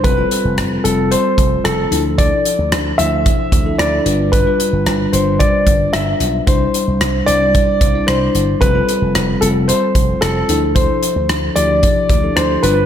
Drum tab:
HH |xxxxxxxx|xxxxxxxx|xxxxxxxx|xxxxxxxx|
SD |--r---r-|--r---r-|--r---r-|--r---r-|
BD |o----o--|o---oo--|o---oo--|o---oo--|

HH |xxxxxxxx|xxxxxxxx|
SD |--r---r-|--r---r-|
BD |o----o--|o---oo--|